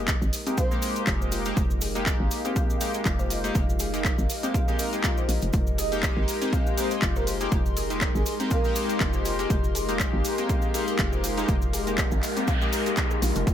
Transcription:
Already playing: F1 G#3 A#3 D#4 G4 A#4 D#5
0.08 kick, clap, closed hi-hat, cabasa
0.22 G#1, cabasa
0.33 open hi-hat, cabasa
0.46 G#3 A#3 C4 D#4 G4, closed hi-hat, cabasa
0.57 C5 F5, kick, closed hi-hat, cabasa
0.71 G#3 A#3 D#4 G4, cabasa
0.82 open hi-hat, cabasa
0.96 closed hi-hat, cabasa
1.07 F1 F4, kick, clap, closed hi-hat, cabasa
1.21 C5, cabasa
1.32 F4, open hi-hat, cabasa
1.45 G#3 A#3 D#4 G4, closed hi-hat, cabasa
1.57 F1 F4 F5, kick, closed hi-hat, cabasa
1.70 cabasa
1.81 G#4, open hi-hat, cabasa
1.95 G#3 A#3 D#4 G4, closed hi-hat, cabasa
2.06 kick, clap, closed hi-hat, cabasa
2.20 G#1
2.31 open hi-hat, cabasa
2.45 G#3 A#3 C4 D#4 G4, closed hi-hat, cabasa
2.56 F5, kick, closed hi-hat, cabasa
2.70 cabasa
2.81 G#3 A#3 D#4 G4, open hi-hat, cabasa
2.94 G#3 A#3 D#4 G4, closed hi-hat, cabasa
3.05 F1 F4, kick, clap, closed hi-hat, cabasa
3.19 C5, cabasa
3.30 F4, open hi-hat, cabasa
3.44 G#3 A#3 D#4 G4, closed hi-hat, cabasa
3.55 F1 F4, kick, closed hi-hat, cabasa
3.69 cabasa
3.79 G#4, open hi-hat, cabasa
3.93 G#3 A#3 D#4 G4, closed hi-hat, cabasa
4.05 kick, clap, closed hi-hat, cabasa
4.18 G#1, cabasa
4.30 open hi-hat, cabasa
4.43 G#3 A#3 C4 D#4 G4, closed hi-hat, cabasa
4.54 F5, kick, closed hi-hat, cabasa
4.68 G#3 A#3 D#4 G4, cabasa
4.79 G#3 A#3 D#4 A#4, open hi-hat, cabasa
4.93 G#3 A#3 D#4 G4, closed hi-hat, cabasa
5.04 G#3 A#3 D#4 F4 G4, kick, clap, closed hi-hat, cabasa
5.17 C5, cabasa
5.29 A#1 F4, open hi-hat, cabasa
5.42 F1, closed hi-hat, cabasa
5.53 F1 F4, kick, closed hi-hat, cabasa
5.67 cabasa
5.78 G#4 D#5 C6, open hi-hat, cabasa
5.92 G#3 A#3 D#4 G4, closed hi-hat, cabasa
6.03 kick, clap, closed hi-hat, cabasa
6.17 G#1
6.28 open hi-hat, cabasa
6.41 G#3 A#3 C4 D#4 G4, closed hi-hat, cabasa
6.53 F5, kick, closed hi-hat, cabasa
6.67 cabasa
6.77 G#3 A#3 D#4 G4 C5, open hi-hat, cabasa
6.91 G#3 A#3 D#4 G4, closed hi-hat, cabasa
7.02 F1 F4, kick, clap, closed hi-hat, cabasa
7.16 A#4 C5, cabasa
7.27 F4, open hi-hat, cabasa
7.40 G#3 A#3 D#4 G4, closed hi-hat, cabasa
7.52 F1 F4, kick, closed hi-hat, cabasa
7.66 cabasa
7.77 G#4, open hi-hat, cabasa
7.90 G#3 A#3 D#4 G4, closed hi-hat, cabasa
8.01 kick, clap, closed hi-hat, cabasa
8.15 G#1 G#4, cabasa
8.26 G#4, open hi-hat, cabasa
8.40 G#3 A#3 C4 D#4 G4, closed hi-hat, cabasa
8.51 A#4 F5, kick, closed hi-hat, cabasa
8.64 G#3 A#3 D#4 G4, cabasa
8.76 open hi-hat, cabasa
8.89 closed hi-hat, cabasa
9.00 F1 F4, kick, clap, closed hi-hat, cabasa
9.13 C5, cabasa
9.25 F4, open hi-hat, cabasa
9.39 G#3 A#3 D#4 G4, closed hi-hat, cabasa
9.50 F1 F4 F5, kick, closed hi-hat, cabasa
9.64 cabasa
9.75 G#4, open hi-hat, cabasa
9.89 G#3 A#3 D#4 G4, closed hi-hat, cabasa
10.00 kick, clap, closed hi-hat, cabasa
10.13 G#1
10.25 open hi-hat, cabasa
10.38 G#3 A#3 C4 D#4 G4, closed hi-hat, cabasa
10.49 F5, kick, closed hi-hat, cabasa
10.62 cabasa
10.74 G#3 A#3 D#4 G4, open hi-hat, cabasa
10.87 G#3 A#3 D#4 G4, closed hi-hat, cabasa
10.99 F1 F4, kick, clap, closed hi-hat, cabasa
11.13 C5, cabasa
11.24 F4, open hi-hat, cabasa
11.37 G#3 A#3 D#4 G4, closed hi-hat, cabasa
11.48 F1 F4, kick, closed hi-hat, noise sweep, cabasa
11.62 cabasa
11.73 G#4, open hi-hat, cabasa
11.87 G#3 A#3 D#4 G4, closed hi-hat, cabasa
11.98 kick, clap, closed hi-hat, cabasa
12.11 G#1, cabasa
12.23 clap, open hi-hat, cabasa
12.36 G#3 A#3 C4 D#4 G4, closed hi-hat, cabasa
12.47 F5, kick, closed hi-hat, cabasa
12.61 G#3 A#3 D#4 G4, cabasa
12.72 G#3 A#3 D#4 A#4, open hi-hat, cabasa
12.86 G#3 A#3 D#4 G4, closed hi-hat, cabasa
12.97 G#3 A#3 D#4 G4, kick, clap, closed hi-hat, cabasa
13.11 G#4, cabasa
13.22 A#1 F4, open hi-hat, cabasa
13.35 F1 F4, closed hi-hat, cabasa
13.43 F1 F4 F5, kick, closed hi-hat
13.47 cabasa

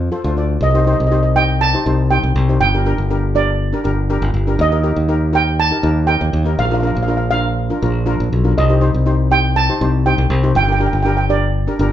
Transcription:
0.12 F4 A4 C5
0.24 D2 F4 A4 C5
0.37 F4 A4 D5
0.61 C2 D#5
0.70 D#4 D#5
0.75 G4 C5 D#5
0.84 D#4 G4 C5 D#5
0.93 D#5
1.00 C2 D#5
1.07 D#5
1.11 D#4 G4 C5 D#5
1.23 D#5
1.36 D#4 G4 D#5 G5
1.61 A5
1.74 D#4 G4 C5
1.86 C2 D#4 G4 C5
2.11 D#4 G4 C5 G5
2.23 C2
2.36 C2
2.49 D#4 G4 C5
2.61 G1 G5
2.74 D4 G4 A#4
2.86 D4 G4 A#4
2.98 G1
3.10 D4 G4 A#4
3.35 D4 G4 A#4 D5
3.73 D4 G4 A#4
3.84 G1 D4 G4 A#4
4.10 D4 G4 A#4
4.22 G1
4.34 G1
4.47 D4 G4 A#4
4.59 D#2 D#5
4.72 D#4 G4 A#4
4.83 D#4 G4 A#4
4.96 D#2
5.09 D#4 G4 A#4
5.33 D#4 G4 A#4 G5
5.60 A5
5.71 D#4 G4 A#4
5.83 D#2 D#4 G4 A#4
6.07 D#4 G4 A#4 G5
6.21 D#2
6.33 D#2
6.45 D#4 G4 A#4
6.59 A#1 F5
6.65 F5
6.70 D4 F4 A#4 F5
6.80 D4 F4 A#4 F5
6.87 F5
6.95 A#1 F5
7.03 F5
7.08 D4 F4 A#4 F5
7.17 F5
7.31 D4 F4 A#4 F5
7.70 D4 F4 A#4
7.82 A#1 D4 F4 A#4
8.06 D4 F4 A#4
8.20 A#1
8.33 B1
8.44 D4 F4 A#4
8.58 C2 D#5
8.69 D#4 G4 C5
8.81 D#4 G4 C5
8.94 C2
9.06 D#4 G4 C5
9.31 D#4 G4 C5 G5
9.56 A5
9.69 D#4 G4 C5
9.81 C2 D#4 G4 C5
10.06 D#4 G4 C5 G5
10.18 C2
10.30 C2
10.43 D#4 G4 C5
10.55 G1 G5
10.64 G5
10.68 D4 G4 A#4
10.72 G5
10.78 D4 G4 A#4 G5
10.86 G5
10.93 G1 G5
11.03 D4 G4 A#4 G5
11.08 G5
11.17 G5
11.29 D4 G4 A#4 D5
11.67 D4 G4 A#4
11.79 G1 D4 G4 A#4

